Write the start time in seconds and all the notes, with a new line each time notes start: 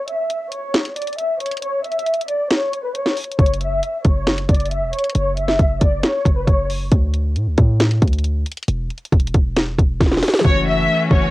0.08 E5, closed hi-hat
0.30 closed hi-hat
0.52 C#5, closed hi-hat
0.74 finger snap, snare, closed hi-hat
0.85 closed hi-hat
0.96 D5, closed hi-hat
1.02 closed hi-hat
1.07 closed hi-hat
1.13 closed hi-hat
1.18 E5, closed hi-hat
1.40 C#5, closed hi-hat
1.46 closed hi-hat
1.51 closed hi-hat
1.57 closed hi-hat
1.62 C#5, closed hi-hat
1.84 E5, closed hi-hat
1.92 closed hi-hat
1.99 closed hi-hat
2.06 closed hi-hat
2.14 closed hi-hat
2.21 closed hi-hat
2.28 D5, closed hi-hat
2.50 C#5, finger snap, snare, closed hi-hat
2.73 closed hi-hat
2.84 B4
2.95 C#5, closed hi-hat
3.06 snare
3.17 closed hi-hat, open hi-hat
3.24 closed hi-hat
3.31 closed hi-hat
3.39 F#1 C#5, kick, closed hi-hat
3.46 closed hi-hat
3.53 closed hi-hat
3.61 E5, closed hi-hat
3.83 closed hi-hat
4.05 F#1 C#5, kick, closed hi-hat
4.27 finger snap, snare, closed hi-hat
4.38 closed hi-hat
4.49 F#1 D5, kick, closed hi-hat
4.55 closed hi-hat
4.60 closed hi-hat
4.66 closed hi-hat
4.71 E5, closed hi-hat
4.82 E1
4.93 C#5, closed hi-hat
4.99 closed hi-hat
5.04 closed hi-hat
5.10 closed hi-hat
5.15 F#1 C#5, closed hi-hat
5.37 E5, closed hi-hat
5.48 snare
5.59 F#1, kick, closed hi-hat
5.81 F#1 D5, kick, closed hi-hat
6.03 C#5, finger snap, snare, closed hi-hat
6.25 F#1, kick, closed hi-hat
6.37 B4
6.47 F#1 C#5, kick, closed hi-hat
6.70 open hi-hat
6.92 D2, kick, closed hi-hat
7.14 closed hi-hat
7.36 A2, closed hi-hat
7.47 D2
7.58 A2, kick, closed hi-hat
7.80 finger snap, snare, closed hi-hat
7.91 closed hi-hat
8.02 D2, kick, closed hi-hat
8.07 closed hi-hat
8.13 closed hi-hat
8.19 closed hi-hat
8.24 closed hi-hat
8.46 closed hi-hat
8.52 closed hi-hat
8.57 closed hi-hat
8.63 closed hi-hat
8.68 E1, closed hi-hat
8.90 closed hi-hat
8.98 closed hi-hat
9.05 closed hi-hat
9.12 E1, kick, closed hi-hat
9.20 closed hi-hat
9.27 closed hi-hat
9.34 E1, kick, closed hi-hat
9.56 finger snap, snare, closed hi-hat
9.78 E1, kick, closed hi-hat
10.00 E1, kick, snare, closed hi-hat
10.06 snare
10.12 snare
10.17 snare
10.23 snare, closed hi-hat, open hi-hat
10.28 snare, closed hi-hat
10.34 snare, closed hi-hat
10.39 E3 A3, snare
10.45 F#1 E3 A3 C#4 F#4 C#5, kick
10.67 E5
11.11 F#1 C#5, kick